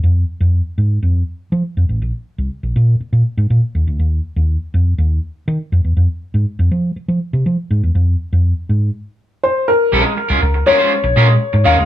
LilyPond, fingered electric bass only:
\new Staff \with { instrumentName = "Fingered electric bass" } { \clef bass \time 4/4 \key bes \dorian \tempo 4 = 121 f,8 r16 f,8 r16 aes,8 f,8 r8 f16 r16 f,16 a,,16 | bes,,16 r8 c,16 r16 bes,,16 bes,8 r16 bes,16 r16 aes,16 bes,16 r16 ees,16 d,16 | ees,8 r16 ees,8 r16 f,8 ees,8 r8 ees16 r16 f,16 e,16 | f,16 r8 aes,16 r16 f,16 f8 r16 f16 r16 c16 f16 r16 aes,16 e,16 |
f,8 r16 f,8 r16 aes,8 r2 | bes,,16 r8 c,16 des,8 r8. bes,,16 bes,8 r16 aes,16 ees,16 d,16 | }